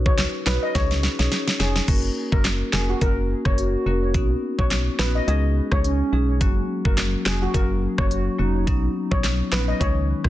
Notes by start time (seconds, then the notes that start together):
0.06 C#2 D#4 F#4 B4 C#5, kick
0.18 snare, clap, closed hi-hat
0.46 B1 D#4 F#4 B4 C#5, snare, clap
0.63 D#5
0.75 C#2 C#4 D#4 G#4 C#5, kick, snare, closed hi-hat
0.91 snare
1.03 snare
1.19 B1 C#4 D#4 G#4 C#5, snare
1.32 snare, closed hi-hat
1.48 snare
1.60 F1 C#4 D#4 G#4 C#5, snare
1.76 snare
1.88 F#1 A#3 C#4 F#4 A#4, kick, closed hi-hat, crash
2.32 F#1 A#3 C#4 F#4 A#4, kick
2.44 snare, clap, closed hi-hat
2.73 F1 A#3 C#4 F#4 G#4 A#4, snare, clap
2.89 F#4
3.01 F#1 A#3 C#4 F#4 A#4, kick, closed hi-hat
3.45 F#1 A#3 C#4 F#4 A#4 C#5, kick, cross-stick
3.58 F#4, closed hi-hat
3.86 F1 A#3 C#4 F#4 A#4
4.14 B1 B3 C#4 D#4 F#4, kick, closed hi-hat
4.58 B1 B3 C#4 D#4 F#4 C#5, kick
4.71 snare, clap, closed hi-hat
4.99 A#1 B3 C#4 D#4 F#4 B4, snare, clap
5.15 D#5
5.27 C#2 G#3 C#4 D#4 G#4 D#5, closed hi-hat
5.72 C#2 G#3 C#4 D#4 G#4 C#5, kick, cross-stick
5.84 C#4, closed hi-hat
6.13 B1 G#3 C#4 D#4 G#4
6.41 F#1 F#3 A#3 C#4 F#4, kick, closed hi-hat
6.85 F#1 F#3 A#3 C#4 F#4 A#4, kick
6.97 snare, clap, closed hi-hat
7.26 F1 F#3 A#3 C#4 F#4 G#4, snare, clap
7.42 F#4
7.54 F#1 F#3 A#3 C#4 F#4 A#4, kick, closed hi-hat
7.98 F#1 F#3 A#3 C#4 F#4 C#5, kick, cross-stick
8.11 F#4, closed hi-hat
8.39 F1 F#3 A#3 C#4 D#4 F#4
8.67 B1 F#3 B3 C#4 D#4, kick, closed hi-hat
9.11 B1 F#3 B3 C#4 D#4 C#5, kick
9.24 snare, clap, closed hi-hat
9.52 A#1 F#3 B3 C#4 D#4 B4, snare, clap
9.68 D#5
9.80 C#2 D#3 G#3 C#4 D#4 C#5, kick, closed hi-hat
10.24 C#2 D#3 G#3 C#4 D#4, kick, cross-stick